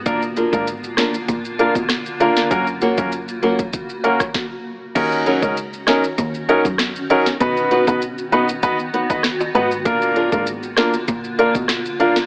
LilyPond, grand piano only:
\new Staff \with { instrumentName = "Grand piano" } { \time 4/4 \key ees \minor \tempo 4 = 98 <bes d' f' bes'>16 r8 <bes d' f' bes'>16 r4. <bes d' f' bes'>16 r8. <bes d' f' bes'>8 | <bes des' ges' bes'>16 r8 <bes des' ges' bes'>16 r4. <bes des' ges' bes'>16 r4 r16 | <des' ees' ges' bes'>8. <des' ees' ges' bes'>16 r8 <des' ees' ges' bes'>16 r8. <des' ees' ges' bes'>16 r8. <des' ees' ges' bes'>16 r16 | <b dis' fis' b'>8. <b dis' fis' b'>16 r8 <b dis' fis' b'>16 r16 <b dis' fis' b'>16 r8 <b dis' fis' b'>16 r8 <b dis' fis' b'>16 r16 |
<bes d' f' bes'>8. <bes d' f' bes'>16 r8 <bes d' f' bes'>16 r8. <bes d' f' bes'>16 r8. <bes d' f' bes'>16 r16 | }